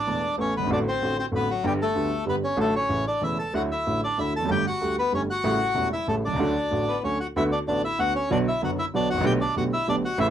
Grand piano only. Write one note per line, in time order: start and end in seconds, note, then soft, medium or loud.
0.07 0.20 E1 soft
0.07 0.20 E2 soft
0.07 0.20 E3 soft
0.07 0.20 A3 soft
0.07 0.20 B3 soft
0.07 0.20 A4 soft
0.38 0.51 A1 soft
0.38 0.51 A2 medium
0.38 0.51 E3 soft
0.38 0.51 A3 soft
0.38 0.52 B3 soft
0.38 0.52 A4 soft
0.57 0.62 F#1 soft
0.63 0.66 G1 medium
0.67 0.70 G#1 medium
0.67 0.83 A1 medium
0.67 0.83 A2 medium
0.67 0.83 D3 medium
0.67 0.83 A3 medium
0.67 0.84 C4 medium
0.67 0.83 F#4 medium
1.02 1.15 A1 soft
1.02 1.15 A2 soft
1.02 1.15 D3 soft
1.02 1.15 A3 soft
1.02 1.15 C4 soft
1.02 1.15 F#4 soft
1.32 1.46 A1 medium
1.32 1.45 A2 medium
1.32 1.46 D3 soft
1.32 1.46 A3 soft
1.32 1.46 C4 soft
1.32 1.46 F#4 soft
1.64 1.77 G1 medium
1.64 1.77 G2 medium
1.64 1.77 D3 medium
1.64 1.77 G3 medium
1.64 1.77 B3 medium
1.64 1.78 G4 medium
1.95 2.09 D2 medium
1.95 2.09 D3 medium
1.95 2.09 G3 soft
1.95 2.09 B3 soft
1.95 2.09 G4 soft
2.26 2.40 G1 medium
2.26 2.40 G2 soft
2.26 2.40 D3 soft
2.26 2.40 G3 soft
2.26 2.40 B3 soft
2.26 2.40 G4 soft
2.57 2.71 A1 medium
2.57 2.71 A2 medium
2.57 2.71 D3 medium
2.57 2.71 F#3 medium
2.57 2.71 A3 medium
2.57 2.71 F#4 medium
2.89 3.03 A1 soft
2.89 3.03 A2 soft
2.89 3.03 C#3 soft
2.89 3.03 E3 soft
2.89 3.03 A3 soft
2.89 3.03 E4 soft
3.21 3.35 E1 soft
3.21 3.35 E2 soft
3.21 3.35 C#3 soft
3.21 3.35 E3 soft
3.21 3.35 A3 soft
3.21 3.36 E4 soft
3.54 3.67 D2 medium
3.54 3.68 D3 medium
3.54 3.68 F#3 medium
3.54 3.67 A3 medium
3.54 3.68 E4 medium
3.87 4.00 A1 soft
3.87 4.00 A2 soft
3.87 4.00 D3 soft
3.87 4.00 F#3 soft
3.87 4.00 A3 soft
3.87 4.00 E4 soft
4.18 4.32 D2 soft
4.18 4.32 D3 soft
4.18 4.31 F#3 soft
4.18 4.31 A3 soft
4.18 4.32 E4 soft
4.39 4.42 E2 soft
4.39 4.46 F2 medium
4.45 4.63 G1 medium
4.45 4.50 F#2 medium
4.45 4.63 G2 medium
4.45 4.63 D3 medium
4.45 4.63 G3 medium
4.45 4.63 A3 medium
4.49 4.63 G4 medium
4.81 4.95 D2 soft
4.81 4.95 D3 soft
4.81 4.94 G3 soft
4.81 4.95 A3 soft
4.81 4.95 G4 soft
5.12 5.26 G1 medium
5.12 5.26 G2 medium
5.12 5.26 D3 soft
5.12 5.26 G3 soft
5.12 5.26 A3 soft
5.12 5.26 G4 soft
5.44 5.57 A1 medium
5.44 5.57 A2 medium
5.44 5.57 C#3 medium
5.44 5.57 G3 medium
5.44 5.57 A3 medium
5.44 5.57 E4 medium
5.75 5.88 E1 medium
5.75 5.88 E2 medium
5.75 5.88 C#3 soft
5.75 5.89 G3 soft
5.75 5.89 A3 soft
5.75 5.89 E4 soft
6.07 6.21 A1 medium
6.07 6.21 A2 medium
6.07 6.20 C#3 soft
6.07 6.21 G3 soft
6.07 6.21 A3 soft
6.07 6.21 E4 soft
6.28 6.31 B1 soft
6.33 6.36 C2 medium
6.33 6.39 C#2 medium
6.39 6.52 D2 medium
6.39 6.52 D3 medium
6.39 6.52 F#3 medium
6.39 6.52 A3 medium
6.39 6.53 F#4 medium
6.71 6.85 A1 soft
6.71 6.84 A2 soft
6.71 6.84 D3 soft
6.71 6.84 F#3 soft
6.71 6.84 A3 soft
6.71 6.85 F#4 soft
7.04 7.17 D2 medium
7.04 7.17 D3 soft
7.04 7.17 F#3 soft
7.04 7.17 A3 soft
7.04 7.17 F#4 soft
7.36 7.49 D2 medium
7.36 7.49 D3 medium
7.36 7.49 A3 medium
7.36 7.49 B3 medium
7.36 7.49 F#4 medium
7.68 7.81 A1 soft
7.68 7.81 A2 medium
7.68 7.81 D3 soft
7.68 7.81 A3 soft
7.68 7.81 B3 soft
7.68 7.81 F#4 soft
7.99 8.12 D2 medium
7.99 8.12 D3 medium
7.99 8.12 A3 soft
7.99 8.12 B3 soft
7.99 8.12 F#4 medium
8.30 8.44 B1 medium
8.30 8.44 B2 medium
8.30 8.43 D3 medium
8.30 8.44 F#3 medium
8.30 8.44 B3 medium
8.30 8.44 F#4 medium
8.62 8.75 F#1 medium
8.62 8.75 F#2 medium
8.62 8.75 D3 medium
8.62 8.75 F#3 soft
8.62 8.75 B3 soft
8.62 8.75 F#4 soft
8.94 9.07 B1 medium
8.94 9.07 B2 medium
8.94 9.06 D3 medium
8.94 9.07 F#3 soft
8.94 9.07 B3 soft
8.94 9.07 F#4 medium
9.13 9.17 G#1 medium
9.13 9.21 A1 medium
9.21 9.24 A#1 medium
9.21 9.37 B1 loud
9.21 9.37 B2 medium
9.21 9.37 D3 medium
9.21 9.37 A3 medium
9.21 9.37 B3 medium
9.21 9.38 G4 medium
9.56 9.70 B1 medium
9.56 9.69 B2 medium
9.56 9.69 D3 soft
9.56 9.69 A3 soft
9.56 9.69 B3 soft
9.56 9.70 G4 medium
9.87 10.01 B1 medium
9.87 10.01 B2 medium
9.87 10.01 D3 medium
9.87 10.01 A3 soft
9.87 10.01 B3 soft
9.87 10.01 G4 medium
10.18 10.30 A1 medium
10.18 10.30 A2 medium
10.18 10.30 C#3 medium
10.18 10.30 E3 medium
10.18 10.30 A3 medium
10.18 10.30 E4 medium